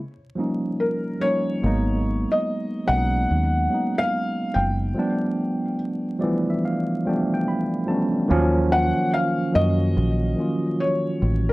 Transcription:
0.35 1.14 F3 medium
0.35 1.15 G3 medium
0.35 1.15 A#3 medium
0.35 1.16 C#4 medium
0.40 1.17 D#4 medium
0.80 1.23 A#4 medium
1.20 1.59 F3 medium
1.20 1.60 G3 medium
1.20 1.61 A#3 medium
1.20 1.61 C#4 medium
1.20 2.35 C#5 loud
1.25 1.62 D#4 medium
1.62 2.25 G#1 medium
1.62 2.79 F#3 medium
1.62 2.79 G#3 medium
1.62 2.80 A#3 medium
1.62 2.81 B3 medium
1.66 2.81 D#4 medium
2.32 2.89 D#5 medium
2.86 3.26 B1 loud
2.86 3.65 F#3 medium
2.86 3.65 G#3 medium
2.86 3.66 A#3 medium
2.86 3.67 B3 medium
2.86 3.94 F#5 loud
2.91 2.98 C#4 medium
2.97 3.70 D#4 medium
3.31 3.67 D#2 medium
3.70 4.87 F#3 medium
3.70 4.87 G#3 medium
3.70 4.88 A#3 medium
3.70 4.89 B3 medium
3.74 4.89 D#4 medium
3.98 4.56 F5 loud
4.54 4.92 F#1 medium
4.54 5.75 G5 medium
4.94 6.12 F3 medium
4.94 6.12 G3 medium
4.94 6.13 A3 medium
4.94 6.14 B3 medium
4.99 6.14 D4 medium
6.19 6.98 F3 medium
6.19 6.98 G3 medium
6.19 6.99 A3 medium
6.19 6.99 B3 medium
6.19 6.46 D5 medium
6.23 7.00 E3 medium
6.50 6.63 E5 medium
6.65 7.03 F5 medium
7.04 7.82 F3 medium
7.04 7.83 G3 medium
7.04 7.83 A3 medium
7.04 7.84 B3 medium
7.04 7.31 G5 medium
7.09 7.84 D4 medium
7.34 7.46 G5 medium
7.48 7.86 B5 medium
7.86 8.26 F3 medium
7.86 8.26 G3 medium
7.86 8.27 A3 medium
7.86 8.27 B3 medium
7.86 8.27 A5 medium
7.90 8.28 C#4 medium
8.28 8.92 D#2 loud
8.28 9.45 D#3 loud
8.28 9.46 F#3 loud
8.28 9.46 A#3 loud
8.28 9.47 C#4 loud
8.33 9.48 F3 loud
8.72 9.10 F#5 loud
9.13 9.56 F5 loud
9.52 9.98 F#2 medium
9.52 10.31 D#3 medium
9.52 10.32 F#3 medium
9.52 10.32 A#3 medium
9.52 10.33 C#4 medium
9.52 10.84 D#5 loud
9.57 10.33 F#4 medium
9.97 10.34 A#1 medium
10.36 11.53 D#3 medium
10.36 11.53 F#3 medium
10.36 11.53 A#3 medium
10.36 11.53 C#4 medium
10.40 11.53 F4 medium
10.80 11.51 C#5 medium
11.22 11.53 A1 medium
11.49 11.53 A#4 medium

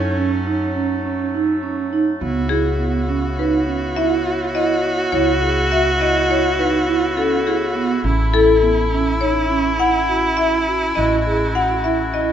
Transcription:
0.00 2.17 F#2 medium
0.00 2.17 F#3 medium
0.00 2.17 A3 medium
0.00 1.93 C#4 medium
0.00 2.19 D#4 medium
0.00 1.59 A4 medium
0.17 0.35 C#4 medium
0.47 0.64 D#4 medium
0.76 0.93 C#4 medium
1.05 1.23 C#4 medium
1.34 1.52 D#4 medium
1.63 1.81 C#4 medium
1.93 2.10 D#4 medium
2.21 5.09 C#2 medium
2.21 7.85 C#3 medium
2.21 2.39 B3 medium
2.21 7.85 B3 soft
2.21 10.93 E4 medium
2.21 8.06 F#4 loud
2.49 2.69 E4 medium
2.49 3.04 G#4 medium
2.79 2.97 B3 medium
3.09 3.27 C#4 medium
3.38 3.56 D#4 medium
3.38 3.99 B4 medium
3.67 3.85 C#4 medium
3.96 4.14 E4 medium
3.96 4.57 E5 medium
4.25 4.43 F#4 medium
4.54 4.72 E4 medium
4.54 5.15 D#5 medium
4.84 5.01 F#4 medium
5.12 8.01 C#2 medium
5.12 5.30 E4 medium
5.12 5.67 C#5 medium
5.41 5.59 G#4 medium
5.71 5.89 F#4 medium
5.71 5.99 E5 medium
6.00 6.18 E4 medium
6.00 6.31 D#5 medium
6.29 6.47 E4 medium
6.29 6.57 C#5 medium
6.58 6.76 D#4 medium
6.58 7.14 B4 medium
6.87 7.05 E4 medium
7.17 7.35 C#4 medium
7.17 7.30 A4 medium
7.46 7.64 E4 medium
7.46 7.88 G#4 medium
7.75 7.93 B3 medium
8.02 10.92 A1 medium
8.02 12.32 A3 medium
8.02 12.32 C#4 medium
8.02 8.22 C#4 medium
8.02 12.32 E4 medium
8.33 8.51 E4 medium
8.33 8.88 A4 loud
8.63 8.81 B3 medium
8.92 9.10 C#4 medium
9.21 9.39 D#4 medium
9.21 9.76 C#5 medium
9.51 9.69 C#4 medium
9.79 9.97 E4 medium
9.79 10.34 F#5 medium
10.09 10.27 F#4 medium
10.37 10.56 E4 medium
10.37 10.98 E5 medium
10.68 10.86 F#4 medium
10.95 12.32 A1 medium
10.95 11.15 E4 medium
10.95 12.32 F#4 medium
10.95 11.56 D#5 medium
11.27 11.44 G#4 medium
11.55 11.73 F#4 medium
11.55 11.85 F#5 medium
11.84 12.03 E4 medium
11.84 12.14 E5 medium
12.14 12.32 E4 medium
12.14 12.32 D#5 medium

